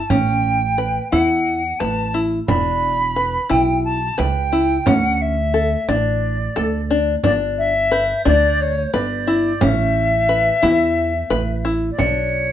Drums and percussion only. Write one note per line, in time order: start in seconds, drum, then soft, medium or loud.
0.10 frame drum medium
0.44 frame drum soft
1.13 frame drum soft
1.81 frame drum soft
2.48 frame drum medium
3.50 frame drum medium
4.19 frame drum medium
4.87 frame drum medium
5.89 frame drum soft
6.56 frame drum soft
7.24 frame drum medium
8.26 frame drum medium
8.94 frame drum soft
9.61 frame drum medium
10.63 frame drum medium
11.31 frame drum soft
11.99 frame drum medium